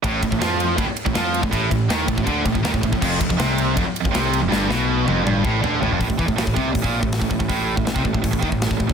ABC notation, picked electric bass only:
X:1
M:4/4
L:1/16
Q:1/4=161
K:Flyd
V:1 name="Picked electric bass" clef=bass
A,,,2 A,,, A,,, F,,4 A,,, z2 A,,, F,,3 A,,, | A,,,2 A,,,2 _E,,2 A,,, A,,, D,,2 A,,, A,,, E,, A,,, A,,, A,,, | F,,,2 F,,, F,,, C,,4 F,,, z2 F,,, C,,3 F,,, | G,,,2 B,,,4 F,,,2 G,,,2 A,,,2 D,,2 A,,, F,,, |
A,,, A,,, E,, A,,, A,,, A,,, C,,2 A,,, _B,,,2 A,,,2 A,,, A,,, A,,, | A,,,3 A,,, A,,, C,, A,,, A,,, A,,, A,,, ^D,, A,,,2 A,,, A,,, A,,, |]